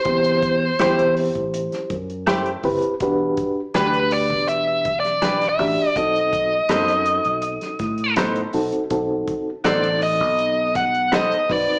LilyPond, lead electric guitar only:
\new Staff \with { instrumentName = "Lead electric guitar" } { \time 4/4 \key b \phrygian \tempo 4 = 81 c''4. r2 r8 | r4 b'8 d''8 \tuplet 3/2 { e''4 d''8~ d''8 e''4 } | dis''2. r4 | r4 d''8 dis''4 fis''8 dis''8 d''8 | }